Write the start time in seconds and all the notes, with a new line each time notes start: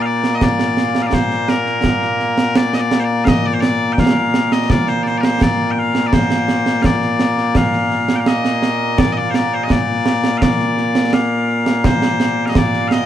Already playing: A#2 A#3
0.02 D5 F5
0.24 snare
0.35 D#5
0.41 D5, concert bass drum, snare
0.59 snare
0.77 snare
0.95 snare
1.02 F5
1.07 D5
1.13 C5, concert bass drum, snare
1.31 snare
1.48 A#4, snare
1.66 snare
1.84 concert bass drum, snare
2.02 snare
2.20 snare
2.38 snare
2.56 D5, snare
2.73 D#5, snare
2.80 D5
2.91 snare
2.99 C5
3.04 D5
3.25 D#5 F5, concert bass drum, snare
3.46 D5
3.53 C5
3.60 D5, snare
3.93 G5
3.98 F5, concert bass drum, snare
4.34 snare
4.52 D#5, snare
4.70 D5, concert bass drum, snare
4.88 C5, snare
5.03 C5 D5, snare
5.17 A#4 D5
5.23 C5, snare
5.41 D5, concert bass drum, snare
5.71 G5
5.78 F5
5.95 snare
6.07 D5
6.13 C5, concert bass drum, snare
6.30 snare
6.48 snare
6.66 snare
6.82 D5 F5, concert bass drum, snare
7.02 snare
7.19 snare
7.38 snare
7.55 F5, concert bass drum, snare
7.73 snare
7.91 snare
8.09 snare
8.15 F5 G5
8.26 D#5, snare
8.45 snare
8.63 snare
8.98 D5, concert bass drum, snare
9.13 D#5
9.17 D5
9.30 C5
9.34 D5, snare
9.54 C5
9.63 D#5
9.70 D5, concert bass drum, snare
10.06 snare
10.24 snare
10.38 F5
10.42 D5, concert bass drum, snare
10.59 snare
10.77 snare
10.95 snare
11.13 F5, snare
11.66 snare
11.84 C5, concert bass drum, snare
12.02 snare
12.20 snare
12.46 D#5 F5
12.55 D5, concert bass drum, snare
12.73 snare
12.88 F5, snare
12.92 D#5